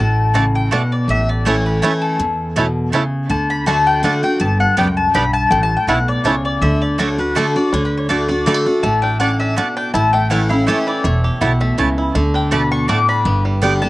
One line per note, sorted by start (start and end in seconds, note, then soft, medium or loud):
0.00 0.70 A1 loud
0.00 0.68 A2 medium
0.00 0.51 A5 medium
0.34 0.70 C#3 medium
0.34 0.44 A3 medium
0.34 0.38 D4 medium
0.34 0.44 F#4 loud
0.34 0.44 D5 loud
0.34 0.44 A5 loud
0.55 0.72 G5 medium
0.71 1.07 B2 loud
0.71 0.81 A3 loud
0.71 0.81 A3 medium
0.71 0.75 D4 medium
0.71 0.81 F#4 medium
0.71 0.81 D5 medium
0.71 0.91 F#5 medium
0.71 0.82 A5 loud
0.92 1.08 D5 medium
1.08 1.81 A1 loud
1.08 1.79 A2 medium
1.08 1.28 E5 loud
1.29 1.45 D5 medium
1.45 1.81 E3 medium
1.45 1.55 A3 medium
1.45 1.81 A3 loud
1.45 1.55 A3 medium
1.45 1.55 C#4 medium
1.45 1.82 C#4 loud
1.45 1.55 E4 medium
1.45 1.82 E4 medium
1.45 1.55 C#5 medium
1.45 1.65 C#5 medium
1.45 1.56 A5 loud
1.66 1.82 B4 medium
1.82 2.18 E3 medium
1.82 1.92 A3 medium
1.82 2.18 A3 medium
1.82 1.92 A3 medium
1.82 2.18 C#4 medium
1.82 1.92 C#4 medium
1.82 1.92 E4 medium
1.82 2.19 E4 loud
1.82 2.01 C#5 medium
1.82 1.92 C#5 medium
1.82 1.92 A5 loud
2.02 2.89 A4 medium
2.19 2.92 E2 medium
2.19 2.90 E2 loud
2.56 2.91 B2 medium
2.56 2.66 A3 medium
2.56 2.65 A3 medium
2.56 2.66 C#4 medium
2.56 2.66 E4 medium
2.56 2.66 C#5 loud
2.56 2.66 A5 loud
2.92 3.28 C#3 medium
2.92 3.02 A3 medium
2.92 3.02 C#4 medium
2.92 3.03 E4 loud
2.92 3.03 E4 medium
2.92 3.03 C#5 medium
2.92 3.03 A5 loud
3.30 4.02 D2 loud
3.30 3.65 D3 medium
3.30 3.49 A5 medium
3.50 3.66 B5 loud
3.66 4.02 D3 medium
3.66 3.76 A3 medium
3.66 4.02 A3 medium
3.66 3.76 A3 medium
3.66 4.03 D4 medium
3.66 3.70 D4 medium
3.66 3.76 F#4 loud
3.66 4.03 F#4 medium
3.66 3.77 D5 medium
3.66 3.86 A5 loud
3.66 3.77 A5 loud
3.87 4.03 G5 loud
4.03 4.22 D3 medium
4.03 4.13 A3 medium
4.03 4.22 A3 medium
4.03 4.13 A3 medium
4.03 4.23 D4 loud
4.03 4.07 D4 medium
4.03 4.13 F#4 loud
4.03 4.22 F#4 loud
4.03 4.14 D5 medium
4.03 4.23 F#5 medium
4.03 4.14 A5 medium
4.23 4.41 D4 medium
4.23 4.40 F#4 medium
4.23 4.40 G5 loud
4.40 4.65 G1 loud
4.40 4.77 G2 medium
4.40 4.60 A5 loud
4.60 4.77 F#5 medium
4.77 5.09 C#2 medium
4.77 5.12 F#2 medium
4.77 4.87 G3 medium
4.77 4.87 B3 loud
4.77 4.87 B3 medium
4.77 4.87 D4 medium
4.77 4.87 G4 loud
4.77 4.87 D5 medium
4.77 4.96 G5 medium
4.77 4.87 G5 loud
4.97 5.14 A5 medium
5.14 5.46 B1 medium
5.14 5.50 G2 medium
5.14 5.23 G3 medium
5.14 5.24 B3 medium
5.14 5.24 D4 medium
5.14 5.24 G4 medium
5.14 5.24 D5 loud
5.14 5.24 G5 medium
5.14 5.33 B5 loud
5.33 5.50 A5 loud
5.51 5.75 A1 loud
5.51 6.22 A2 loud
5.51 5.62 G5 loud
5.63 5.75 A5 loud
5.77 5.88 G5 medium
5.87 6.19 B1 medium
5.87 6.24 B2 medium
5.87 5.97 A3 medium
5.87 5.97 C#4 medium
5.87 5.98 E4 loud
5.87 5.97 E4 medium
5.87 5.98 C#5 loud
5.87 6.07 F#5 medium
5.87 5.98 A5 loud
6.08 6.25 D5 medium
6.24 6.56 C#2 medium
6.24 6.60 C#3 medium
6.24 6.34 A3 medium
6.24 6.34 C#4 medium
6.24 6.34 E4 medium
6.24 6.35 C#5 medium
6.24 6.44 C#5 medium
6.24 6.35 A5 loud
6.45 6.62 D5 medium
6.61 7.34 D2 loud
6.61 6.98 D3 loud
6.61 6.81 E5 loud
6.82 6.98 D5 medium
6.98 7.18 D3 medium
6.98 7.08 A3 medium
6.98 7.18 A3 medium
6.98 7.02 D4 medium
6.98 7.18 D4 medium
6.98 7.08 F#4 loud
6.98 7.17 F#4 medium
6.98 7.18 C#5 medium
6.98 7.09 D5 medium
6.98 7.09 A5 loud
7.18 7.36 D4 soft
7.18 7.35 F#4 medium
7.18 7.36 B4 medium
7.35 7.55 D3 medium
7.35 7.45 A3 medium
7.35 7.55 A3 loud
7.35 7.39 D4 medium
7.35 7.56 D4 loud
7.35 7.45 F#4 loud
7.35 7.54 F#4 loud
7.35 7.56 A4 medium
7.35 7.46 D5 loud
7.35 7.46 A5 loud
7.56 7.73 D4 medium
7.56 7.72 F#4 medium
7.56 7.73 D5 loud
7.73 8.45 D2 loud
7.73 8.08 D3 medium
7.73 8.08 D4 medium
7.73 7.85 C#5 medium
7.85 7.97 B4 medium
7.97 8.09 C#5 medium
8.09 8.28 D3 loud
8.09 8.19 A3 medium
8.09 8.29 A3 medium
8.09 8.28 D4 medium
8.09 8.29 D4 medium
8.09 8.19 F#4 medium
8.09 8.28 F#4 medium
8.09 8.27 D5 medium
8.09 8.19 D5 medium
8.09 8.20 A5 medium
8.28 8.65 D4 medium
8.28 8.47 D4 medium
8.28 8.46 F#4 medium
8.28 8.63 D5 medium
8.46 8.65 D3 medium
8.46 8.54 G3 medium
8.46 8.56 A3 medium
8.46 8.66 A3 loud
8.46 8.66 D4 loud
8.46 8.56 F#4 loud
8.46 8.65 F#4 loud
8.46 8.56 D5 loud
8.46 8.57 A5 loud
8.54 8.82 A3 medium
8.66 9.02 D4 medium
8.66 8.84 D4 soft
8.66 8.83 F#4 medium
8.83 9.56 A1 medium
8.83 9.54 A2 medium
8.83 10.14 A3 medium
8.83 9.02 A5 loud
9.02 9.20 D4 medium
9.02 9.19 G5 loud
9.20 9.30 A3 medium
9.20 9.55 C#4 medium
9.20 9.40 D4 medium
9.20 9.30 F#4 medium
9.20 9.30 D5 loud
9.20 9.39 F#5 loud
9.20 9.30 A5 loud
9.40 9.56 D4 medium
9.40 9.57 E5 medium
9.56 9.93 B2 loud
9.56 9.66 A3 medium
9.56 9.76 D4 medium
9.56 9.67 F#4 medium
9.56 9.67 D5 medium
9.56 9.76 F#5 medium
9.56 9.67 A5 medium
9.77 9.94 D4 medium
9.77 9.93 G5 loud
9.94 10.67 A1 loud
9.94 10.65 A2 loud
9.94 10.47 E4 medium
9.94 10.13 A5 loud
10.13 10.71 A3 medium
10.13 10.30 G5 loud
10.30 10.50 E3 medium
10.30 10.40 A3 medium
10.30 10.50 A3 medium
10.30 10.84 C#4 medium
10.30 10.50 C#4 medium
10.30 10.40 E4 medium
10.30 10.49 E4 medium
10.30 10.41 C#5 loud
10.30 10.49 F#5 medium
10.30 10.41 A5 loud
10.49 10.68 C#4 medium
10.49 10.86 E4 medium
10.49 10.67 E4 medium
10.49 10.67 F5 medium
10.67 11.03 E3 medium
10.67 10.77 A3 medium
10.67 11.03 A3 medium
10.67 11.04 C#4 loud
10.67 10.77 E4 medium
10.67 11.04 E4 medium
10.67 11.21 G4 medium
10.67 10.78 C#5 medium
10.67 10.87 E5 medium
10.67 10.78 A5 medium
10.87 11.38 E4 medium
10.87 11.04 D5 medium
11.04 11.29 E1 medium
11.04 11.75 E2 medium
11.04 11.57 A3 medium
11.04 11.75 C#5 medium
11.24 11.75 G4 medium
11.41 11.73 B1 loud
11.41 11.77 B2 medium
11.41 11.51 A3 medium
11.41 11.51 E4 loud
11.41 11.94 E4 medium
11.41 11.51 C#5 medium
11.41 11.62 F#5 loud
11.41 11.52 A5 loud
11.60 12.12 A3 medium
11.60 12.21 E5 loud
11.78 12.10 C#2 medium
11.78 12.14 C#3 medium
11.78 12.15 E3 medium
11.78 11.88 A3 medium
11.78 11.88 E4 medium
11.78 11.88 C#5 loud
11.78 11.88 A5 loud
11.98 12.15 E4 medium
12.15 12.88 D2 loud
12.15 12.86 D3 medium
12.15 12.68 A3 medium
12.34 12.51 D4 medium
12.34 12.52 G5 medium
12.51 12.87 B2 medium
12.51 12.61 A3 loud
12.51 12.70 D4 medium
12.51 12.62 F#4 loud
12.51 12.62 D5 medium
12.51 12.62 A5 loud
12.51 12.71 B5 medium
12.72 12.88 D4 medium
12.72 12.88 C#6 loud
12.88 13.24 A2 medium
12.88 12.98 A3 medium
12.88 13.08 D4 medium
12.88 12.99 F#4 loud
12.88 12.99 D5 loud
12.88 12.99 A5 loud
12.88 13.08 D6 loud
13.09 13.26 D4 medium
13.09 13.43 B5 loud
13.25 13.89 G1 loud
13.25 13.89 G2 medium
13.25 13.79 B3 medium
13.45 13.89 G3 medium
13.62 13.81 D3 medium
13.62 13.81 G3 medium
13.62 13.72 B3 medium
13.62 13.82 B3 loud
13.62 13.89 D4 medium
13.62 13.72 G4 loud
13.62 13.81 G4 medium
13.62 13.72 D5 loud
13.62 13.73 G5 loud
13.82 13.89 B3 soft
13.82 13.89 G4 medium
13.82 13.89 A5 loud